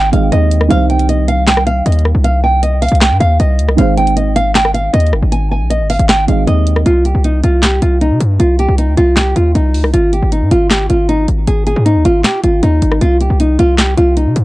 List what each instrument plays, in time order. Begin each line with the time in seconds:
Already playing: 808-style bass G#1, nylon-string guitar G5
0.11 808-style bass G#1, felt piano D#3 G#3 C4 G#4 D#5, nylon-string guitar F5, closed hi-hat
0.32 808-style bass D#2, nylon-string guitar D#5, closed hi-hat
0.51 closed hi-hat
0.61 cross-stick
0.67 808-style bass C2, felt piano D#3 G3 C4 D#4, nylon-string guitar F5, closed hi-hat
0.72 felt piano C5
0.90 nylon-string guitar G5, closed hi-hat
0.99 closed hi-hat
1.09 nylon-string guitar D#5, closed hi-hat
1.28 nylon-string guitar F5, closed hi-hat
1.47 nylon-string guitar G5, snare, clap, closed hi-hat
1.57 cross-stick
1.67 nylon-string guitar F5, closed hi-hat
1.86 808-style bass D#2, nylon-string guitar D#5, closed hi-hat
1.92 closed hi-hat
1.99 closed hi-hat
2.05 cross-stick
2.15 808-style bass C2
2.24 nylon-string guitar F5, closed hi-hat
2.44 nylon-string guitar G5
2.63 nylon-string guitar D#5, closed hi-hat
2.82 nylon-string guitar F5, closed hi-hat, open hi-hat
2.89 808-style bass C2, closed hi-hat
2.95 closed hi-hat
3.01 nylon-string guitar G5, snare, clap, closed hi-hat
3.11 808-style bass G2
3.20 808-style bass D#2, nylon-string guitar F5, closed hi-hat
3.40 808-style bass C2, nylon-string guitar D#5, closed hi-hat
3.59 808-style bass D2, closed hi-hat
3.69 808-style bass C2, cross-stick
3.75 808-style bass G#1, felt piano D#3 G#3 C4 G#4, nylon-string guitar F5, closed hi-hat
3.80 felt piano C5
3.97 nylon-string guitar G5, closed hi-hat
4.07 closed hi-hat
4.16 nylon-string guitar D#5, closed hi-hat
4.36 nylon-string guitar F5, closed hi-hat
4.55 nylon-string guitar G5, snare, clap, closed hi-hat
4.65 cross-stick
4.74 nylon-string guitar F5, closed hi-hat
4.93 808-style bass D#2, nylon-string guitar D#5, closed hi-hat
5.00 closed hi-hat
5.07 closed hi-hat
5.13 808-style bass G1, cross-stick
5.22 808-style bass G#1
5.32 nylon-string guitar G#5, closed hi-hat
5.51 nylon-string guitar G#5
5.61 808-style bass A#1
5.70 nylon-string guitar D#5, closed hi-hat
5.80 808-style bass G#1
5.90 nylon-string guitar F5, closed hi-hat, open hi-hat
5.99 808-style bass G#1, closed hi-hat
6.09 nylon-string guitar G5, snare, clap, closed hi-hat
6.27 808-style bass G#1, felt piano D#3 G#3 C4 G#4 D#5, nylon-string guitar F5, closed hi-hat
6.47 808-style bass D#2, nylon-string guitar D#5, closed hi-hat
6.67 closed hi-hat
6.76 cross-stick
6.86 808-style bass C2, nylon-string guitar F4, closed hi-hat
7.05 nylon-string guitar G4, closed hi-hat
7.15 808-style bass C2
7.24 nylon-string guitar D#4, closed hi-hat
7.44 808-style bass C2, nylon-string guitar F4, closed hi-hat
7.63 nylon-string guitar G4, snare, clap, closed hi-hat
7.82 808-style bass C2, nylon-string guitar F4, closed hi-hat
8.01 nylon-string guitar D#4, closed hi-hat
8.11 808-style bass C3
8.20 808-style bass G2, closed hi-hat
8.40 808-style bass C2, nylon-string guitar F4, closed hi-hat
8.59 nylon-string guitar G4, closed hi-hat
8.68 808-style bass C2
8.78 nylon-string guitar D#4, closed hi-hat
8.88 808-style bass D2
8.97 808-style bass C2, nylon-string guitar F4, closed hi-hat
9.16 nylon-string guitar G4, snare, clap, closed hi-hat
9.36 808-style bass D#2, nylon-string guitar F4, closed hi-hat
9.55 808-style bass C2, nylon-string guitar D#4, closed hi-hat
9.74 808-style bass D2, open hi-hat
9.84 808-style bass C2, cross-stick
9.93 808-style bass G#1, nylon-string guitar F4, closed hi-hat
10.13 nylon-string guitar G4, closed hi-hat
10.22 808-style bass G#1
10.32 nylon-string guitar D#4, closed hi-hat
10.42 808-style bass G#2
10.51 808-style bass G#1, nylon-string guitar F4, closed hi-hat
10.70 nylon-string guitar G4, snare, clap, closed hi-hat
10.90 808-style bass G#1, nylon-string guitar F4, closed hi-hat
11.09 nylon-string guitar D#4, closed hi-hat
11.28 808-style bass G#1, closed hi-hat
11.47 808-style bass G#1, nylon-string guitar G#4, closed hi-hat
11.67 nylon-string guitar G#4, closed hi-hat
11.76 808-style bass G#2
11.86 nylon-string guitar D#4, closed hi-hat
11.96 808-style bass D#2
12.05 808-style bass G#1, nylon-string guitar F4, closed hi-hat
12.24 nylon-string guitar G4, snare, clap, closed hi-hat
12.44 808-style bass G#1, nylon-string guitar F4, closed hi-hat
12.63 808-style bass D#2, nylon-string guitar D#4, closed hi-hat
12.82 808-style bass G#1, closed hi-hat
12.92 cross-stick
13.01 808-style bass C2, nylon-string guitar F4, closed hi-hat
13.21 nylon-string guitar G4, closed hi-hat
13.30 808-style bass C2
13.40 nylon-string guitar D#4, closed hi-hat
13.59 808-style bass C2, nylon-string guitar F4, closed hi-hat
13.78 nylon-string guitar G4, snare, clap, closed hi-hat
13.97 808-style bass C2, nylon-string guitar F4, closed hi-hat
14.17 nylon-string guitar D#4, closed hi-hat
14.26 808-style bass C3
14.36 808-style bass G2, closed hi-hat